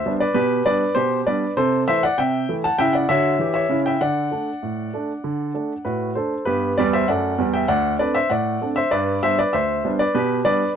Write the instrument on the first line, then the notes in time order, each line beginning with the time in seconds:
upright piano
Already playing: C5 E5
0.06 G3 B3 D4
0.20 B4 D5
0.34 B2 G4 B4
0.66 G3 B3 D4 B4 D5
0.95 B2 G4 C5
1.27 G3 B3 D4 B4 D5
1.57 C3 A4 C5
1.88 E3 A3 E4 C5 E5
2.03 D5 F#5
2.18 C3 E5 G5
2.49 E3 A3 E4
2.64 F#5 A5
2.78 C#3 E4 E5 G5
2.93 D5 F#5
3.09 D3 F#4 C#5 E5
3.39 E3 G4
3.54 C#5 E5
3.69 C#3 E4
3.86 E5 G5
4.01 D3 D5 F#5
4.31 A3 D4
4.63 A2
4.94 A3 D4
5.24 D3
5.54 A3 D4
5.85 A2 F#4 B4
6.15 A3 D4 A4 C5
6.45 G2 B3 G4 B4
6.78 E2 G3 B4 D5
6.93 C5 E5
7.08 F#2 A3 D5 F#5
7.38 E2 G3
7.54 E5 G5
7.68 D2 D5 F#5
7.99 A3 C4 D4 B4 D5
8.15 C5 E5
8.30 A2 D5 F#5
8.61 A3 C4 D4
8.76 C5 E5
8.91 G2 B4 D5
9.23 G3 B3 D4 C5 E5
9.39 B4 D5
9.53 D2 C5 E5
9.84 G3 B3 D4
9.99 B4 D5
10.15 B2 G4 B4
10.45 G3 B3 D4 B4 D5